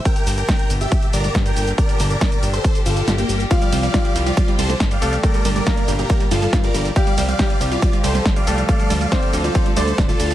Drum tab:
RD |----------------|----------------|x-x-x-x-x-x-x-x-|x-x-x-x-x-x-x-x-|
HH |xxoxxxoxxxoxxxox|xxoxxxoxxxoxxxox|xxoxxxoxxxoxxxox|xxoxxxoxxxoxxxox|
SH |xxxxx-xxx-xxxxxx|xxxxxxxxxxxxxxxx|xxxxx-xxx-xxxxxx|xxxxx-xxx-xxxxxx|
SD |----o------oo---|--o-o-------o---|----o------oo---|--o-o-------o---|
BD |o---o---o---o---|o---o---o-------|o---o---o---o---|o---o---o---o---|

RD |x-x-x-x-x-x-x-x-|x-x-x-x-x-x-x-x-|
HH |xxoxxxoxxxoxxxox|xxoxxxoxxxoxxxox|
SH |xxxxx-xxx-xxxxxx|xxxxx-xxx-xxxxxx|
SD |----o------oo---|--o-o-------o---|
BD |o---o---o---o---|o---o---o---o---|